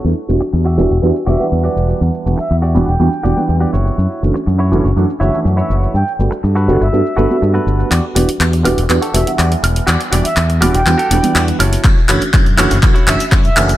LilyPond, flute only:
\new Staff \with { instrumentName = "Flute" } { \time 4/4 \key e \dorian \tempo 4 = 122 r2 r8 e''16 r4 r16 | r8. e''16 r8. g''4. r8. | r2 r8 e''16 r8 e''16 r8 | g''16 r4. e''4. r8. |
r2 r8 e''16 r4 r16 | r8. e''16 r8. g''4. r8. | r2 r8 e''16 r8 e''16 r8 | }